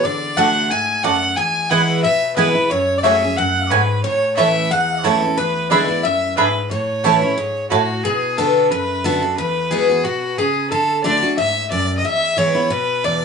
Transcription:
0.03 steel-string acoustic guitar D3, resonator guitar played with a steel bar D5, fiddle D5
0.37 steel-string acoustic guitar D3 A3 D4 F#4, mandolin A3 F#4 D5 A5, resonator guitar played with a steel bar F#5, fiddle F#5
0.70 steel-string acoustic guitar G#2, resonator guitar played with a steel bar G#5, fiddle G#5
1.03 steel-string acoustic guitar F#2, mandolin A3 F#4 D5 A5, resonator guitar played with a steel bar F#5, fiddle F#5
1.37 steel-string acoustic guitar E2, fiddle G#5, resonator guitar played with a steel bar G#5
1.70 steel-string acoustic guitar E3 G#3 B3 E4, mandolin B3 E4 B4 G#5, fiddle F#5, resonator guitar played with a steel bar F#5
2.03 steel-string acoustic guitar B2, fiddle E5, resonator guitar played with a steel bar E5
2.36 steel-string acoustic guitar E3 G#3 B3 E4, mandolin B3 E4 B4 G#5, fiddle B4, resonator guitar played with a steel bar B4
2.55 steel-string acoustic guitar B3 E4
2.70 steel-string acoustic guitar F#2, resonator guitar played with a steel bar C#5, fiddle C#5
2.98 resonator guitar played with a steel bar D5, fiddle D5
3.03 steel-string acoustic guitar F#3 A3 C#4 G#4, mandolin A3 F#4 C#5 G#5, fiddle E5, resonator guitar played with a steel bar E5
3.22 steel-string acoustic guitar C#4 G#4
3.37 steel-string acoustic guitar F#2, fiddle F#5, resonator guitar played with a steel bar F#5
3.70 steel-string acoustic guitar G#2, mandolin A3 F#4 C#5 G#5, fiddle B4, resonator guitar played with a steel bar B4
4.03 steel-string acoustic guitar A2, fiddle C#5, resonator guitar played with a steel bar C#5
4.37 steel-string acoustic guitar E3 A3 C#4 E4, mandolin A3 E4 C#5 A5, fiddle E5, resonator guitar played with a steel bar E5
4.71 steel-string acoustic guitar E2, resonator guitar played with a steel bar F#5, fiddle F#5
5.04 steel-string acoustic guitar E3 A3 C#4 E4, mandolin A3 E4 C#5 A5, fiddle A4, resonator guitar played with a steel bar A4
5.22 steel-string acoustic guitar C#4 E4
5.37 steel-string acoustic guitar E2, fiddle B4, resonator guitar played with a steel bar B4
5.70 steel-string acoustic guitar D3 G#3 B3 E4, mandolin D4 G#4 E5 B5, resonator guitar played with a steel bar D5, fiddle D5
5.88 steel-string acoustic guitar B3 E4
6.03 steel-string acoustic guitar F#2, resonator guitar played with a steel bar E5, fiddle E5
6.37 steel-string acoustic guitar G#2, mandolin D4 G#4 E5 B5, resonator guitar played with a steel bar B4, fiddle B4
6.70 steel-string acoustic guitar A2, resonator guitar played with a steel bar C#5, fiddle C#5
7.04 steel-string acoustic guitar E3 A3 C#4 E4, mandolin A3 E4 C#5 A5
7.21 steel-string acoustic guitar C#4 E4
7.38 steel-string acoustic guitar G#2
7.70 steel-string acoustic guitar A2, mandolin A3 E4 C#5 A5, fiddle F#4, resonator guitar played with a steel bar F#4
8.04 steel-string acoustic guitar B2, fiddle G#4, resonator guitar played with a steel bar G#4
8.37 steel-string acoustic guitar D3 B3 D4 F#4, fiddle A4, resonator guitar played with a steel bar A4
8.71 steel-string acoustic guitar F#2, fiddle B4, resonator guitar played with a steel bar B4
9.04 steel-string acoustic guitar D3 B3 D4 F#4, fiddle A4, resonator guitar played with a steel bar A4
9.22 steel-string acoustic guitar D4 F#4
9.37 steel-string acoustic guitar E2, fiddle B4, resonator guitar played with a steel bar B4
9.71 steel-string acoustic guitar E3 G#3 B3 F#4, fiddle G#4, resonator guitar played with a steel bar G#4
9.89 steel-string acoustic guitar B3 F#4
10.04 steel-string acoustic guitar B2, fiddle F#4, resonator guitar played with a steel bar F#4
10.38 steel-string acoustic guitar C#3, fiddle G#4, resonator guitar played with a steel bar G#4
10.70 steel-string acoustic guitar D3, fiddle A4, resonator guitar played with a steel bar A4
11.04 steel-string acoustic guitar D3 A3 D4 F#4, fiddle D5, resonator guitar played with a steel bar D5
11.23 steel-string acoustic guitar D4 F#4
11.37 steel-string acoustic guitar G#2, fiddle E5, resonator guitar played with a steel bar E5
11.71 steel-string acoustic guitar F#2, resonator guitar played with a steel bar D5, fiddle D5
11.97 fiddle D#5, resonator guitar played with a steel bar D#5
12.05 steel-string acoustic guitar E2, resonator guitar played with a steel bar E5, fiddle E5
12.37 steel-string acoustic guitar E3 G#3 B3 E4, resonator guitar played with a steel bar C#5, fiddle C#5
12.55 steel-string acoustic guitar B3 E4
12.70 steel-string acoustic guitar B2, resonator guitar played with a steel bar B4, fiddle B4
13.04 steel-string acoustic guitar E2, fiddle D5, resonator guitar played with a steel bar D5

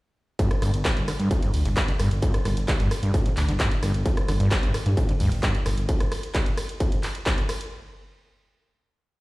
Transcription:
0.39 acid bass G2, kick, closed hi-hat, ride
0.51 cross-stick, closed hi-hat, ride
0.62 detuned saw bass G1, acid bass G2, cross-stick, closed hi-hat, open hi-hat, ride
0.74 detuned saw bass G1, closed hi-hat, ride
0.85 acid bass G#2, kick, snare, clap, closed hi-hat, ride
0.97 detuned saw bass G1, closed hi-hat, ride
1.08 acid bass D3, cross-stick, closed hi-hat, open hi-hat, ride
1.20 detuned saw bass G2, acid bass G2, closed hi-hat, ride
1.31 kick, closed hi-hat, ride
1.43 acid bass G2, closed hi-hat, ride
1.54 detuned saw bass D2, open hi-hat, ride
1.65 detuned saw bass G1, acid bass G#2, closed hi-hat, ride
1.76 kick, snare, clap, closed hi-hat, ride
1.88 acid bass D3, snare, closed hi-hat, ride
1.99 detuned saw bass G1, acid bass G2, cross-stick, closed hi-hat, open hi-hat, ride
2.11 detuned saw bass G1, closed hi-hat, ride
2.22 acid bass G2, kick, closed hi-hat, ride
2.34 cross-stick, snare, closed hi-hat, ride
2.45 detuned saw bass G1, acid bass G#2, cross-stick, closed hi-hat, open hi-hat, ride
2.57 detuned saw bass G1, snare, closed hi-hat, ride
2.68 acid bass D3, kick, snare, clap, closed hi-hat, ride
2.80 detuned saw bass G1, acid bass G2, snare, closed hi-hat, ride
2.91 cross-stick, closed hi-hat, open hi-hat, ride
3.03 detuned saw bass G2, acid bass G2, closed hi-hat, ride
3.14 kick, closed hi-hat, ride
3.26 acid bass G#2, closed hi-hat, ride
3.37 detuned saw bass D2, clap, closed hi-hat, open hi-hat, ride
3.49 detuned saw bass G1, acid bass D3, snare, closed hi-hat, ride
3.59 acid bass G2, kick, snare, clap, closed hi-hat, ride
3.71 snare, closed hi-hat, ride
3.83 detuned saw bass G1, acid bass G2, cross-stick, closed hi-hat, open hi-hat, ride
3.94 detuned saw bass G1, closed hi-hat, ride
4.06 acid bass G#2, kick, closed hi-hat, ride
4.17 cross-stick, closed hi-hat, ride
4.28 detuned saw bass G1, acid bass D3, cross-stick, closed hi-hat, open hi-hat, ride
4.40 detuned saw bass G1, acid bass G2, closed hi-hat, ride
4.51 kick, snare, clap, closed hi-hat, ride
4.63 detuned saw bass G1, acid bass G2, closed hi-hat, ride
4.74 cross-stick, closed hi-hat, open hi-hat, ride
4.86 detuned saw bass G2, acid bass G#2, closed hi-hat, ride
4.97 kick, closed hi-hat, ride
5.09 acid bass D3, closed hi-hat, ride
5.20 detuned saw bass D2, acid bass G2, open hi-hat, ride
5.32 detuned saw bass G1, closed hi-hat, ride
5.42 acid bass G2, kick, snare, clap, closed hi-hat, ride
5.55 snare, closed hi-hat, ride
5.65 detuned saw bass G1, acid bass G#2, cross-stick, closed hi-hat, open hi-hat, ride
5.77 detuned saw bass G1, closed hi-hat, ride
5.89 kick, closed hi-hat, ride
6.00 cross-stick, closed hi-hat, ride
6.12 cross-stick, open hi-hat, ride
6.23 closed hi-hat, ride
6.35 kick, clap, closed hi-hat, ride
6.46 closed hi-hat, ride
6.57 cross-stick, open hi-hat, ride
6.69 closed hi-hat, ride
6.80 kick, closed hi-hat, ride
6.92 closed hi-hat, ride
7.03 clap, open hi-hat, ride
7.15 closed hi-hat, ride
7.26 kick, clap, closed hi-hat, ride
7.38 closed hi-hat, ride
7.49 cross-stick, open hi-hat, ride
7.61 closed hi-hat, ride

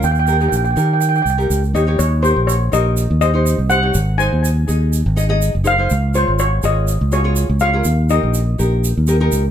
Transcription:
0.03 fingered electric bass D#2, steel pan G5, shaker
0.12 steel pan G5, shaker
0.19 steel pan G5
0.26 nylon-string guitar D#4 G4 A#4, steel pan G5, shaker
0.33 steel pan G5
0.40 nylon-string guitar D#4 G4 A#4, steel pan G5, shaker
0.49 fingered electric bass A#1, steel pan G5, shaker
0.56 steel pan G5
0.65 steel pan G5, shaker
0.71 steel pan G5
0.76 fingered electric bass D#3, nylon-string guitar D#4 G4 A#4, steel pan G5, shaker
0.85 steel pan G5
0.93 steel pan G5
1.01 steel pan G5, shaker
1.09 steel pan G5
1.15 steel pan G5, shaker
1.22 fingered electric bass C2, steel pan G5
1.26 steel pan G5, shaker
1.38 nylon-string guitar D#4 G4 A#4, shaker
1.50 fingered electric bass C#2, shaker
1.64 shaker
1.74 fingered electric bass D#2, nylon-string guitar D#4 G4 C#5, steel pan D#5, shaker
1.87 nylon-string guitar D#4 G4 C#5
1.99 fingered electric bass D#2, steel pan C#5, shaker
2.22 nylon-string guitar D#4 G4 A#4, steel pan C5, shaker
2.36 fingered electric bass A#1
2.47 steel pan C#5, shaker
2.72 fingered electric bass A#1, nylon-string guitar D#4 G4 A#4, steel pan D#5, shaker
2.97 shaker
3.10 fingered electric bass D#2
3.21 nylon-string guitar D#4 G4 C5, steel pan D#5, shaker
3.34 nylon-string guitar D#4 G4 C5
3.46 shaker
3.58 fingered electric bass C2
3.69 nylon-string guitar D#4 G4 C5, steel pan F#5, shaker
3.82 nylon-string guitar D#4 G4 C#5
3.94 fingered electric bass G#1, shaker
4.18 nylon-string guitar D#4 G#4 C5, steel pan G#5, shaker
4.33 fingered electric bass D#2
4.45 shaker
4.68 fingered electric bass D#2, nylon-string guitar D#4 G#4 D#5, shaker
4.93 shaker
5.06 fingered electric bass G#1
5.16 nylon-string guitar D#4 G#4 D#5, shaker
5.29 nylon-string guitar D#4 G#4 D#5
5.42 shaker
5.55 fingered electric bass F#1
5.64 nylon-string guitar D#4 G#4 C5, steel pan F5, shaker
5.78 nylon-string guitar D#4 G#4 C5
5.90 fingered electric bass C#2, shaker
6.14 nylon-string guitar F4 G#4 C#5, steel pan C5, shaker
6.28 fingered electric bass G#1
6.39 steel pan C#5, shaker
6.63 fingered electric bass G#1, nylon-string guitar F4 G#4 C#5, steel pan D#5, shaker
6.88 shaker
7.01 fingered electric bass C#2
7.12 nylon-string guitar F4 G#4 C#5, steel pan C#5, shaker
7.24 nylon-string guitar F4 G#4 C#5
7.36 shaker
7.50 fingered electric bass C#2
7.60 nylon-string guitar F4 G#4 C#5, steel pan F5, shaker
7.73 nylon-string guitar F4 G#4 A#4
7.84 fingered electric bass D#2, shaker
8.09 nylon-string guitar D#4 G4 A#4, steel pan D#5, shaker
8.23 fingered electric bass A#1
8.34 shaker
8.58 fingered electric bass A#1, nylon-string guitar D#4 G4 A#4, shaker
8.84 shaker
8.97 fingered electric bass D#2
9.07 nylon-string guitar D#4 G4 A#4, shaker
9.20 nylon-string guitar D#4 G4 A#4
9.32 fingered electric bass C#2, shaker

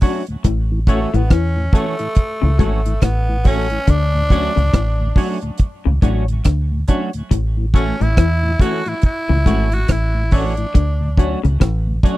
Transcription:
0.01 clean electric guitar F#3 A3 C#4 F#4, tonewheel organ C#4 D4 F#4, synth stab D4 F#4 C#5, kick, open hi-hat
0.27 tonewheel organ D2 A2, closed hi-hat
0.44 fingered electric bass A1, clean electric guitar A2, kick, closed hi-hat
0.71 tonewheel organ A2 E3
0.87 clean electric guitar E3 A3 C#4 F#4, tonewheel organ A3 C#4 F#4, tenor saxophone A3, synth stab F#4 A4 C#5, kick, closed hi-hat
1.14 fingered electric bass A1, clean electric guitar A2, tonewheel organ A2 E3, tenor saxophone B3, closed hi-hat
1.30 fingered electric bass E2, clean electric guitar E3, tenor saxophone C#4, kick, cross-stick, closed hi-hat
1.56 tonewheel organ A2 E3
1.73 clean electric guitar E3 A3 C#4 F#4, tonewheel organ A3 C#4 F#4, tenor saxophone A3, synth stab F#4 A4 C#5, kick, closed hi-hat
1.99 tonewheel organ A2 E3, muted clean electric guitar stroke, closed hi-hat
2.15 kick, closed hi-hat
2.42 fingered electric bass C#2, tonewheel organ A2 E3, clean electric guitar C#3
2.59 fingered electric bass G#1, clean electric guitar G#2 E3 A3 C#4 F#4, tonewheel organ A3 C#4 F#4, synth stab F#4 A4 C#5, kick, closed hi-hat
2.85 tonewheel organ A2 E3, closed hi-hat
3.02 fingered electric bass A1, clean electric guitar A2, tenor saxophone B3, kick, cross-stick, closed hi-hat
3.29 tonewheel organ A2 E3
3.44 clean electric guitar E3 A3 C#4 F#4, tonewheel organ A3 C#4 F#4, tenor saxophone C#4, synth stab F#4 A4 C#5, kick, open hi-hat
3.70 tonewheel organ A2 E3, closed hi-hat
3.87 fingered electric bass D2, clean electric guitar D3, tenor saxophone D4, kick, closed hi-hat
4.14 tonewheel organ D2 A2
4.30 clean electric guitar F#3 A3 C#4 F#4, tonewheel organ C#4 D4 F#4, synth stab D4 F#4 C#5, kick, closed hi-hat
4.56 fingered electric bass C#2, tonewheel organ D2 A2, clean electric guitar C#3, closed hi-hat
4.73 fingered electric bass A1, clean electric guitar A2, kick, cross-stick, closed hi-hat
4.99 tonewheel organ D2 A2
5.16 clean electric guitar F#3 A3 C#4 F#4, tonewheel organ C#4 D4 F#4, synth stab D4 F#4 C#5, kick, open hi-hat
5.42 tonewheel organ D2 A2, muted clean electric guitar stroke, closed hi-hat
5.58 kick, closed hi-hat
5.85 fingered electric bass C#2, tonewheel organ D2 A2, clean electric guitar C#3
6.02 fingered electric bass A1, clean electric guitar A2 F#3 A3 C#4 F#4, tonewheel organ C#4 D4 F#4, synth stab D4 F#4 C#5, kick, closed hi-hat
6.28 tonewheel organ D2 A2, closed hi-hat
6.45 fingered electric bass D2, clean electric guitar D3, kick, cross-stick, closed hi-hat
6.71 tonewheel organ D2 A2
6.88 clean electric guitar F#3 A3 C#4 F#4, tonewheel organ C#4 D4 F#4, synth stab D4 F#4 C#5, kick, closed hi-hat
7.13 tonewheel organ D2 A2, closed hi-hat
7.31 fingered electric bass A1, clean electric guitar A2, kick, closed hi-hat
7.57 tonewheel organ A2 E3
7.74 clean electric guitar E3 A3 C#4 F#4, tonewheel organ A3 C#4 F#4, tenor saxophone C#4, synth stab F#4 A4 C#5, kick, closed hi-hat
8.00 fingered electric bass A1, tonewheel organ A2 E3, clean electric guitar A2, tenor saxophone E4, closed hi-hat
8.17 fingered electric bass E2, clean electric guitar E3, kick, cross-stick, closed hi-hat
8.43 tonewheel organ A2 E3
8.59 clean electric guitar E3 A3 C#4 F#4, tonewheel organ A3 C#4 F#4, synth stab F#4 A4 C#5, tenor saxophone F#4, kick, closed hi-hat
8.86 tonewheel organ A2 E3, tenor saxophone E4, muted clean electric guitar stroke, closed hi-hat
9.02 tenor saxophone E4, kick, closed hi-hat
9.29 fingered electric bass C#2, tonewheel organ A2 E3, clean electric guitar C#3
9.45 fingered electric bass G#1, clean electric guitar G#2 E3 A3 C#4 F#4, tonewheel organ A3 C#4 F#4, synth stab F#4 A4 C#5, kick, closed hi-hat
9.71 tonewheel organ A2 E3, tenor saxophone F#4, closed hi-hat
9.88 fingered electric bass A1, clean electric guitar A2, tenor saxophone E4, kick, cross-stick, closed hi-hat
10.15 tonewheel organ A2 E3
10.31 clean electric guitar E3 A3 C#4 F#4, tonewheel organ A3 C#4 F#4, tenor saxophone D4, synth stab F#4 A4 C#5, kick, open hi-hat
10.57 tonewheel organ A2 E3, closed hi-hat
10.74 fingered electric bass D2, clean electric guitar D3, kick, closed hi-hat
11.01 tonewheel organ D2 A2
11.17 clean electric guitar F#3 A3 C#4 F#4, tonewheel organ C#4 D4 F#4, synth stab D4 F#4 C#5, kick, closed hi-hat
11.43 fingered electric bass C#2, tonewheel organ D2 A2, clean electric guitar C#3, closed hi-hat
11.60 fingered electric bass A1, clean electric guitar A2, kick, cross-stick, closed hi-hat
11.86 tonewheel organ D2 A2
12.03 clean electric guitar F#3 A3 C#4 F#4, tonewheel organ C#4 D4 F#4, synth stab D4 F#4 C#5, kick, closed hi-hat

